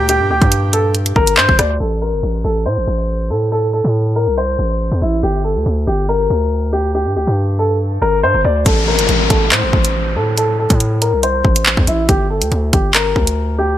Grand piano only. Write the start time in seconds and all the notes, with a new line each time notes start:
0.09 G4
0.31 G4
0.73 A4
1.16 A#4
1.37 C5
1.59 D5
1.80 A4
2.02 A#4
2.44 A4
2.66 C5
3.30 A4
3.52 A4
3.73 A4
4.16 A#4
4.37 C5
5.02 E4
5.23 G4
5.44 A4
5.87 G4
6.09 A#4
6.73 G4
6.95 G4
7.16 G4
7.59 A4
8.02 A#4
8.23 C5
8.45 D5
8.66 A4
8.88 A#4
9.30 A4
9.51 C5
10.16 A4
10.38 A4
10.59 A4
11.02 A#4
11.23 C5
11.87 E4
12.09 G4
12.30 A4
12.73 G4
12.94 A#4
13.58 G4